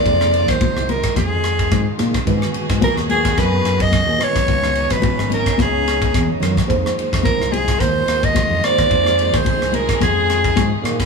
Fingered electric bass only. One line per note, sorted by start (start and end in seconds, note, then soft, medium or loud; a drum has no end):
0.05 0.45 F2 medium
0.49 0.60 D#2 medium
0.76 1.02 C2 medium
1.16 1.68 F2 medium
1.72 1.86 G#2 medium
2.00 2.14 A#2 medium
2.15 muted fingered electric bass stroke soft
2.27 2.41 G#2 medium
2.55 muted fingered electric bass stroke soft
2.70 2.81 G#2 medium
2.97 3.34 D#2 medium
3.38 3.63 F#2 medium
3.64 4.04 F#2 medium
4.07 4.19 D#2 medium
4.20 muted fingered electric bass stroke soft
4.35 4.47 B1 medium
4.48 4.88 C#2 medium
4.91 5.03 B1 medium
5.18 5.44 G#1 medium
5.59 6.10 C#2 medium
6.15 6.28 E2 medium
6.42 6.56 F#2 medium
6.57 muted fingered electric bass stroke soft
6.70 6.84 F2 medium
6.97 muted fingered electric bass stroke soft
7.13 7.24 F2 medium
7.40 7.77 C2 medium
7.80 8.06 D#2 medium
8.07 8.47 D#2 medium
8.50 8.62 F2 medium
8.63 muted fingered electric bass stroke soft
8.78 8.90 D#2 medium
8.91 9.30 F2 medium
9.33 9.45 D#2 medium
9.61 9.87 C2 medium
10.01 10.53 F2 medium
10.57 10.71 G#2 medium
10.84 10.98 A#2 medium
10.99 muted fingered electric bass stroke soft